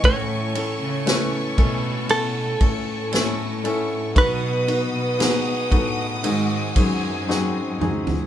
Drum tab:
RD |x-x-x-x-x-x-x-x-|x-x-x-x-x-x-----|
SD |----o-------o---|----o-------o---|
T2 |----------------|--------------o-|
FT |----------------|---------------o|
BD |o-----o---o-----|o-----o---o-----|